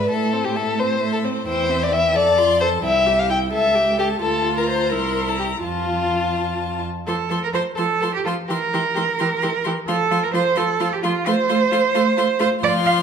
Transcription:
Already playing: G#2 E5
0.09 A2 A3 A4 E5
0.33 C4 C5
0.45 G4
0.55 A3 A4 E5
0.79 C4 C5
1.01 A3 E5
1.13 A4
1.24 C4 C5
1.47 E2 E4 C5 G5
1.69 C4 E5
1.83 D5
1.92 E4 E5 G5
2.15 F2 A4 D5 A5
2.38 F4 C6
2.60 A4 C5 A5
2.83 C2 E4 E5 G5
3.06 G4 E5
3.19 F5
3.30 E4 G5
3.52 C#2 A4 E5 A5
3.75 G4 G5
3.98 G4 A4 A5
4.21 D2 F4 A4 A5
4.57 A#4 A#5
4.69 C5
4.91 C2 E4 A#4 C6
5.28 A4 A#5
5.39 G4
5.63 F2 F4 A5
7.07 F3 A4 C6
7.29 F3 A4 C6
7.43 A#4
7.53 F3 A4 C5 C6
7.75 F3 A4 C6
8.01 F3 A4 C6
8.14 G4
8.25 F3 F4 A4 C6
8.48 E3 G4 A#4 C6
8.73 E3 G4 C6
8.95 E3 G4 C6
9.19 E3 G4 C6
9.42 E3 G4 C6
9.64 E3 G4 C6
9.88 F3 F4 A4 C6
10.11 F3 F4 C6
10.23 A#4
10.34 F3 F4 C5 C6
10.56 F3 F4 A4 C6
10.80 F3 F4 C6
10.93 G4
11.03 F3 F4 C6
11.26 A3 F4 C5 C6
11.49 A3 F4 C6
11.71 A3 F4 C6
11.94 A3 F4 C6
12.17 A3 F4 C6
12.39 A3 F4 C5 C6
12.61 F3 F4 D5 C6
12.86 F5

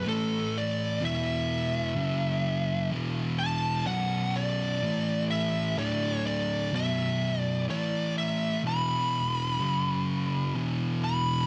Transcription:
0.07 A2 E3 A3 A4
0.58 D5
1.01 E2 B2 E3 E5
1.96 F#2 C#3 F#3
2.91 E2 B2 E3
3.39 A5
3.86 B1 F#2 B2 F#5
4.36 D5
4.83 A2 E3 A3
5.31 E5
5.77 D2 A2 D3 D5
6.15 C#5
6.27 D5
6.74 B1 F#2 B2 E5
7.40 D5
7.69 A2 E3 A3 D5
8.18 E5
8.64 E2 B2 E3 B5
9.60 F#2 C#3 F#3
10.55 E2 B2 E3
11.04 B5

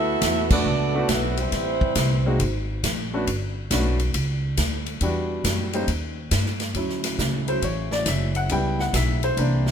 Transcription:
Already playing: D2 A3 B3 E4 F#4 A4 E5
0.21 E2, kick, snare, hi-hat pedal, ride
0.50 A3 B3 D4 E4 F#4 A4 D5, kick, crash
0.65 C#2
0.94 A3 B3 D4 E4 F#4
1.08 B1 B2 F#3 A3 B3 E4 F#4 B4, kick, snare, hi-hat pedal, ride
1.37 E3 G3 C4 E4 B4 C5, ride
1.52 A1, kick, snare, ride
1.81 kick
1.95 C2, kick, snare, hi-hat pedal, ride
2.26 G#3 A#3 C4 D#4 F#4
2.40 G#1, kick, ride
2.84 A#1, kick, snare, hi-hat pedal, ride
3.14 A3 B3 C#4 D4 F#4
3.27 G1, kick, ride
3.70 B1 A3 B3 C#4 D4 F#4, kick, snare, hi-hat pedal, ride
3.99 ride
4.14 C#2, kick, ride
4.57 D2, kick, snare, hi-hat pedal, ride
4.86 ride
5.01 E2 G3 B3 D4 E4 F#4, kick, ride
5.44 F#2, kick, snare, hi-hat pedal, ride
5.73 G3 A#3 C#4 D#4 C5, ride
5.87 D#2, kick, ride
6.31 G2, kick, snare, hi-hat pedal, ride
6.46 snare
6.60 snare, ride
6.74 D2 C#3 F#3 C#4 E4, kick, ride
6.89 snare
7.04 snare, ride
7.19 C#2, kick, snare, hi-hat pedal
7.48 F#3 C#4 E4 C5, ride
7.62 A1 C#5, kick, ride
7.91 D5, snare
8.06 F#1 E5, kick, snare, hi-hat pedal, ride
8.35 F#5, ride
8.49 C#2 C#3 G3 B3 E4 G5, kick, ride
8.79 F#5, snare
8.93 B1 E5, kick, snare, hi-hat pedal, ride
9.23 C5, ride
9.36 C2 D3 E3 A#3 C4 D4, kick, ride
9.66 snare

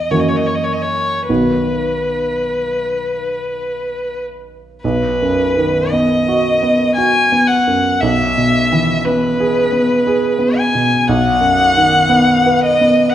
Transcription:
Already playing: D#5
0.10 F#2 E3 A#3 F#4 C#5
0.19 D#5
0.28 C#5
0.36 D#5
0.46 C#5
0.55 D#5
0.63 C#5
0.72 D#5
0.82 C#5
1.29 B1 D#3 B3 F#4 B4
4.83 B1 B4
5.22 F#2
5.57 D#3
5.91 B3 D#5
6.28 F#4
6.63 B3
6.95 F#4 G#5
7.32 B3
7.48 F#5
7.67 F#2
8.00 B1 E5
8.38 B2
8.72 E3
9.05 B3 B4
9.40 G#4
9.72 B3
10.07 G#4
10.39 B3
10.58 G#5
10.75 B2
11.07 B1 F#5
11.40 F#2
11.77 D#3
12.09 B3
12.46 B4
12.64 D#5
12.81 B3
13.09 F#5

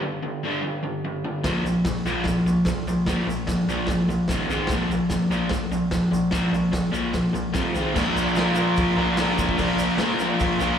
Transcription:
0.03 G2 D3
0.23 G2 D3
0.43 G2 D3 G3
0.62 G2 D3
0.83 G2 D3
1.05 G2 D3
1.25 G2 D3
1.44 A#2 F3 A#3, kick, snare, open hi-hat, shaker
1.64 A#2 F3, shaker
1.85 A#2 F3, kick, snare, open hi-hat, shaker
2.06 A#2 F3 A#3, shaker
2.24 A#2 F3, kick, snare, open hi-hat, shaker
2.46 A#2 F3, shaker
2.65 A#2 F3, kick, snare, open hi-hat, shaker
2.88 A#2 F3, shaker
3.06 A#2 F3 A#3, kick, snare, open hi-hat, shaker
3.28 A#2 F3, shaker
3.47 A#2 F3, kick, snare, open hi-hat, shaker
3.69 A#2 F3 A#3, shaker
3.87 A#2 F3, kick, snare, open hi-hat, shaker
4.09 A#2 F3, shaker
4.28 D#2 A#2 D#3, kick, snare, open hi-hat, shaker
4.49 G#2 D#3 G#3, shaker
4.67 kick, snare, open hi-hat, shaker
4.71 A#2 F3 A#3
4.91 A#2 F3, shaker
5.10 A#2 F3, kick, snare, open hi-hat, shaker
5.31 A#2 F3 A#3, shaker
5.49 A#2 F3, kick, snare, open hi-hat, shaker
5.72 A#2 F3, shaker
5.91 A#2 F3, kick, snare, open hi-hat, shaker
6.11 A#2 F3, shaker
6.31 A#2 F3 A#3, kick, snare, open hi-hat, shaker
6.52 A#2 F3, shaker
6.72 A#2 F3, kick, snare, open hi-hat, shaker
6.92 A#2 F3 A#3, shaker
7.14 A#2 F3, kick, snare, open hi-hat, shaker
7.33 A#2 F3, shaker
7.53 F2 C3 F3, kick, snare, open hi-hat, shaker
7.74 G#2 D#3 G#3, shaker
7.94 A#2 F3 A#3 D4 F4 A#4, kick, crash, shaker
8.17 shaker
8.28 shaker
8.35 A#2 F3 A#3 D4 F4 A#4, snare, open hi-hat, shaker
8.55 D4 F4 A#4, shaker
8.59 A#3
8.76 kick, open hi-hat, shaker
8.97 A#3 D4 F4 A#4
9.17 A#3 D4 F4 A#4, snare, open hi-hat, shaker
9.39 kick, shaker
9.49 kick
9.57 A#2 F3 A#3 D4 F4 A#4, kick, open hi-hat, shaker
9.79 shaker
9.90 shaker
9.98 A#2 F3 A#3 D4 F4, snare, open hi-hat, shaker
10.03 A#4
10.19 D4 F4 A#4, shaker
10.24 A#3
10.40 kick, open hi-hat, shaker
10.59 A#3 D4 F4 A#4, shaker

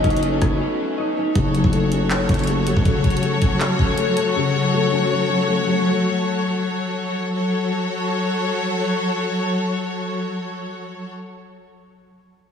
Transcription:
Already playing: F#3 A3 B3 C#4 D#4 A4 B4 D#5
0.04 F#1 C#4 C#5, kick, closed hi-hat
0.10 closed hi-hat
0.17 closed hi-hat
0.23 A3 A4, closed hi-hat
0.42 F#1 B3 B4, kick, cross-stick, closed hi-hat
0.61 C#4 C#5
0.98 D#4 D#5
1.17 C#4 C#5
1.35 F#1 C#3 F#3 F#4 A4 C#5, kick, closed hi-hat
1.55 F#3, closed hi-hat
1.64 F#1, kick
1.73 A3, closed hi-hat
1.92 C#4, closed hi-hat
2.10 C#5, clap, closed hi-hat
2.29 F#1 C#4, kick, closed hi-hat
2.34 closed hi-hat
2.39 closed hi-hat
2.44 closed hi-hat
2.47 A3, closed hi-hat
2.67 F#3, closed hi-hat
2.77 F#1, kick
2.85 C#3, kick, closed hi-hat
3.04 F#3, kick, closed hi-hat
3.10 closed hi-hat
3.17 closed hi-hat
3.23 A3, closed hi-hat
3.42 C#4, kick, closed hi-hat
3.60 C#5, clap, closed hi-hat
3.79 C#4, kick
3.98 A3, closed hi-hat
4.17 F#3, closed hi-hat
4.36 C#3
4.54 F#3
4.73 A3
4.92 C#4
5.10 C#5
5.29 C#4
5.48 A3
5.66 F#3
7.35 F#3 F#4 A4 C#5

